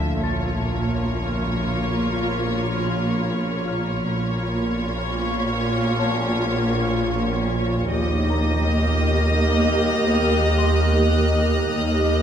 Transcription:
Already playing: D2 D3 A3 F4 E5 A5
0.21 A#1 A#2 A#3 F4 C#5 A5 A#5 C#6 F6 A6
0.98 B5
3.67 F6
4.05 A#1 A#2 A#3 F4 C#5 C#6
5.20 C#6
5.86 C6
5.99 C#5 A5
7.90 D#2 A#3 G4 A#4 D#5 D#6
8.30 A#4 A#5
8.68 F6
9.44 F#6
10.58 C6
11.75 D#2 A#3 G4 D#5 A#5

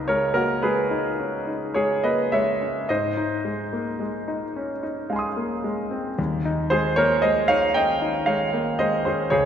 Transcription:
Already playing: C#2 D#4 B4 D#5
0.08 G#3 A#4 C#5
0.34 A#3 F#4 A#4
0.63 G#3 G#4 B4
0.91 D#4
1.19 C#4
1.47 D#4
1.74 G#3 G#4 C#5
2.04 A#3 B4 D#5
2.32 G#3 C#5 E5
2.61 C#4
2.89 G#2 C5 D#5
3.17 D#4
3.45 G#3
3.73 A#3
4.00 G#3
4.28 D#4
4.56 C#4
4.83 D#4
5.10 G#3 F5 G#5
5.16 C6 D#6
5.37 A#3
5.64 G#3
5.91 C4
6.19 D#2
6.45 D#4
6.70 G#3 G#4 C5
6.96 A#3 A#4 C#5
7.22 G#3 C5 D#5
7.48 D#4 C#5 F5
7.74 C#4 D#5 G5
8.02 D#4
8.26 G#3 C#5 F5
8.53 A#3
8.79 G#3 C5 D#5
9.05 C#4 G#4 C5
9.30 C#2 G#4 C#5

